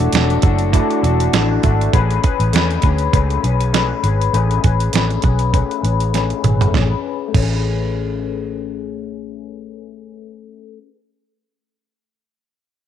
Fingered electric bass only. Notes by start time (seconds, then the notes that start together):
0.13 E1
0.43 F#1
1.03 E1
1.33 A1
1.63 G#1
1.93 A1
2.40 A1
2.53 E2
2.83 D2
3.13 C#2
3.43 B1
4.03 G#1
4.33 A1
4.64 A1
4.94 A1
5.23 B1
5.83 A1
6.44 G#1
6.74 A1
7.34 A1